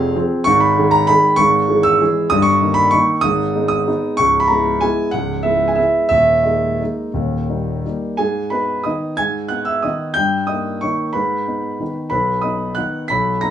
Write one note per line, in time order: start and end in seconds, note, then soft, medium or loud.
0.00 0.17 F1 medium
0.00 0.17 F2 medium
0.00 0.12 F3 medium
0.00 0.12 C4 medium
0.00 0.12 G#4 medium
0.00 0.17 F5 loud
0.16 0.44 F3 medium
0.16 0.44 C4 medium
0.16 0.44 G#4 medium
0.44 0.76 G#1 medium
0.44 0.76 G#2 medium
0.44 0.60 C#6 loud
0.60 0.92 B5 loud
0.78 1.06 D#3 soft
0.78 1.06 G#3 medium
0.78 1.06 G#4 medium
0.91 1.08 A#5 loud
1.07 1.36 D#3 medium
1.07 1.36 G#3 medium
1.07 1.36 G#4 medium
1.07 1.38 B5 loud
1.36 1.68 G#1 medium
1.36 1.68 G#2 medium
1.36 1.83 C#6 loud
1.68 1.97 E3 medium
1.68 1.97 G#3 medium
1.68 1.97 G#4 medium
1.83 2.30 E6 loud
2.01 2.28 E3 medium
2.01 2.29 G#3 medium
2.01 2.28 G#4 medium
2.30 2.61 G1 medium
2.30 2.61 G2 medium
2.30 2.45 D#6 loud
2.42 2.76 C#6 loud
2.61 2.90 D#3 soft
2.61 2.90 A#3 medium
2.61 2.90 D#4 medium
2.74 2.92 B5 loud
2.91 3.21 D#3 medium
2.91 3.21 A#3 medium
2.91 3.21 D#4 medium
2.91 3.23 C#6 loud
3.21 3.54 G#1 medium
3.21 3.55 G#2 medium
3.21 3.67 D#6 loud
3.55 3.84 G#3 soft
3.55 3.85 B3 soft
3.55 3.85 D#4 medium
3.68 4.17 D#6 loud
3.87 4.16 G#3 soft
3.87 4.16 B3 medium
3.87 4.16 D#4 medium
4.17 4.49 C#1 medium
4.17 4.49 C#2 medium
4.17 4.41 C#6 loud
4.40 4.49 B5 loud
4.47 4.79 G#3 soft
4.47 4.78 B3 soft
4.47 4.79 E4 soft
4.47 4.81 A#5 medium
4.81 5.11 G#3 medium
4.81 5.11 B3 soft
4.81 5.10 E4 medium
4.81 5.13 G#5 loud
5.11 5.44 C#1 medium
5.11 5.44 C#2 medium
5.11 5.44 F#5 loud
5.43 5.74 G#3 soft
5.43 5.74 B3 soft
5.43 5.75 E4 soft
5.43 5.68 E5 medium
5.68 5.77 G#5 medium
5.75 6.08 G#3 soft
5.75 6.08 B3 soft
5.75 6.08 E4 soft
5.75 6.07 E5 medium
6.09 6.44 D#1 medium
6.09 6.44 D#2 medium
6.09 6.44 E5 loud
6.43 6.77 G#3 soft
6.43 6.77 A#3 soft
6.43 6.77 D#4 soft
6.43 8.00 D#5 medium
6.80 7.11 G#3 soft
6.80 7.11 A#3 soft
6.80 7.12 D#4 soft
7.14 7.47 D#1 medium
7.14 7.47 D#2 medium
7.49 7.81 G3 soft
7.49 7.81 A#3 soft
7.49 7.81 D#4 soft
7.85 8.15 G3 soft
7.85 8.15 A#3 soft
7.85 8.16 D#4 soft
8.17 8.50 G#2 medium
8.17 8.49 G#4 medium
8.17 8.51 G#5 medium
8.50 8.82 B3 soft
8.50 8.83 D#4 soft
8.50 8.83 B4 medium
8.50 8.85 B5 medium
8.84 9.15 D#3 soft
8.84 9.15 B3 soft
8.84 9.15 D#4 soft
8.84 9.15 D#5 medium
8.84 9.17 D#6 medium
9.17 9.50 G#2 medium
9.17 9.48 G#5 medium
9.17 9.50 G#6 loud
9.48 9.81 B3 soft
9.48 9.81 D#4 soft
9.48 9.66 F#5 medium
9.48 9.66 F#6 medium
9.65 9.82 E5 medium
9.65 9.83 E6 medium
9.82 10.13 D#3 soft
9.82 10.14 B3 soft
9.82 10.14 D#4 soft
9.82 10.14 D#5 medium
9.82 10.15 D#6 medium
10.14 10.48 G2 medium
10.14 10.47 G5 medium
10.14 10.48 G6 loud
10.47 10.80 A#3 soft
10.47 10.80 D#4 soft
10.47 10.80 D#5 medium
10.47 10.82 D#6 medium
10.81 11.12 D#3 soft
10.81 11.13 A#3 soft
10.81 11.13 D#4 soft
10.81 11.13 C#5 medium
10.81 11.14 C#6 medium
11.13 11.46 G#2 medium
11.13 11.92 B4 medium
11.13 11.96 B5 medium
11.48 11.77 B3 soft
11.48 11.78 D#4 soft
11.80 12.09 D#3 soft
11.80 12.10 B3 soft
11.80 12.10 D#4 soft
12.10 12.43 B1 medium
12.10 12.41 B4 medium
12.10 12.43 B5 medium
12.41 12.74 B3 soft
12.41 12.74 D#4 soft
12.41 12.74 D#5 medium
12.41 12.76 D#6 medium
12.75 13.06 D#3 soft
12.75 13.07 B3 soft
12.75 13.07 D#4 soft
12.75 13.07 F#5 medium
12.75 13.09 F#6 medium
13.08 13.41 B1 medium
13.08 13.40 B5 medium
13.08 13.41 B6 loud
13.41 13.51 B3 soft
13.41 13.51 D#4 soft
13.41 13.51 A#5 medium
13.41 13.51 A#6 medium